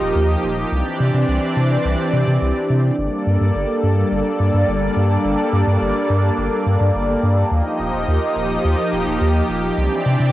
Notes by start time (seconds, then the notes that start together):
Already playing: F3 A#3 D#4 G4 D#5
0.01 D#1
0.15 D#2
0.44 D#1
0.72 C2 E3 C4 D4 D5
1.00 C3
1.14 C3
1.28 C2
1.57 C3
1.85 C2
2.13 C3
2.27 C3
2.42 C2
2.70 C3
2.98 G1 G3 A#3 D4 A4 D5
3.27 G2
3.41 G2
3.55 G1
3.83 G2
4.12 G1
4.40 G2
4.54 G2
4.68 G1
4.97 G2
5.25 G1
5.53 G2
5.67 G2
5.81 G1
6.10 G2
6.38 G1
6.66 G2
6.81 G2
6.95 G1
7.23 G2
7.51 D#2 F3 D#4 G4 D#5
7.79 D#1
7.94 D#1
8.08 D#2
8.36 D#1
8.65 D#2
8.93 D#1
9.07 D#1
9.21 D#2
9.49 D#1
9.78 C2 E3 C4 D4 D5
10.06 C3
10.20 C3